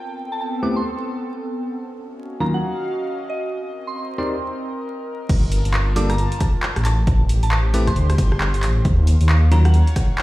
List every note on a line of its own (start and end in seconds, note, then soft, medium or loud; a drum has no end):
0.00 1.74 B3 medium
0.00 1.74 C4 medium
0.00 1.74 A4 medium
0.00 1.74 G5 medium
0.32 0.37 A5 medium
0.41 0.49 A5 medium
0.63 0.79 A3 medium
0.63 0.79 C4 medium
0.63 0.79 E4 medium
0.63 0.79 G4 medium
0.63 0.79 B4 medium
0.63 0.74 D6 medium
0.76 1.21 C6 medium
1.74 3.52 C#4 medium
1.88 3.52 F#4 medium
1.92 5.29 D#5 medium
2.07 4.24 F5 medium
2.40 2.57 D#3 medium
2.40 2.57 F#3 medium
2.40 2.57 A#3 medium
2.40 2.57 C#4 medium
2.40 2.57 F4 loud
2.40 2.51 A#5 medium
2.54 2.67 F#5 medium
3.29 3.46 D#5 medium
3.52 5.93 C4 medium
3.57 6.85 A#4 medium
3.87 3.93 C6 medium
3.96 4.05 C6 medium
4.18 4.35 C4 medium
4.18 4.35 D#4 medium
4.18 4.35 G4 medium
4.18 4.35 A#4 medium
4.18 4.35 D5 medium
4.18 4.82 C6 medium
5.29 5.59 G1 loud
5.29 6.85 F4 medium
5.29 kick loud
5.29 closed hi-hat medium
5.29 crash loud
5.39 7.67 A5 medium
5.52 open hi-hat loud
5.65 6.26 G1 medium
5.65 closed hi-hat medium
5.74 clap loud
5.96 6.13 G3 medium
5.96 6.13 A#3 medium
5.96 6.13 D4 medium
5.96 6.13 F4 medium
5.96 6.13 A4 loud
5.96 6.07 D6 medium
5.96 open hi-hat loud
6.10 6.23 A#5 medium
6.10 cross-stick medium
6.10 closed hi-hat medium
6.18 closed hi-hat medium
6.32 closed hi-hat medium
6.40 kick loud
6.40 cross-stick medium
6.40 open hi-hat loud
6.63 clap loud
6.76 7.03 A1 medium
6.76 cross-stick medium
6.76 closed hi-hat medium
6.85 8.85 G4 medium
6.85 7.01 A5 medium
6.85 clap medium
6.85 open hi-hat loud
7.07 7.37 A1 loud
7.07 kick loud
7.07 closed hi-hat medium
7.20 8.85 C5 medium
7.29 open hi-hat loud
7.43 7.92 A1 medium
7.43 7.49 A5 medium
7.43 closed hi-hat medium
7.52 7.60 A5 medium
7.52 8.85 C6 loud
7.52 clap loud
7.74 7.91 A3 loud
7.74 7.91 C4 medium
7.74 7.91 E4 medium
7.74 7.91 G4 medium
7.74 7.91 B4 loud
7.74 7.85 D6 medium
7.74 open hi-hat loud
7.87 8.32 C6 medium
7.87 kick medium
7.87 cross-stick medium
7.87 closed hi-hat medium
7.96 8.13 D2 medium
7.96 closed hi-hat medium
8.10 cross-stick medium
8.10 open hi-hat medium
8.18 8.64 G1 loud
8.18 kick loud
8.18 open hi-hat loud
8.32 cross-stick medium
8.41 clap loud
8.54 closed hi-hat soft
8.63 8.80 A1 loud
8.63 clap medium
8.63 open hi-hat loud
8.85 9.15 D#2 loud
8.85 10.23 F5 medium
8.85 kick loud
8.85 closed hi-hat medium
9.07 open hi-hat loud
9.16 10.23 C#5 loud
9.21 9.81 D#2 medium
9.21 closed hi-hat medium
9.29 10.23 F#5 medium
9.29 clap loud
9.52 9.68 D#3 medium
9.52 9.68 F#3 medium
9.52 9.68 A#3 medium
9.52 9.68 C#4 medium
9.52 9.68 F4 loud
9.52 9.63 A#5 medium
9.52 open hi-hat loud
9.65 9.78 F#5 medium
9.65 cross-stick medium
9.65 closed hi-hat medium
9.74 closed hi-hat medium
9.87 closed hi-hat medium
9.96 kick loud
9.96 cross-stick medium
9.96 open hi-hat loud
10.18 clap loud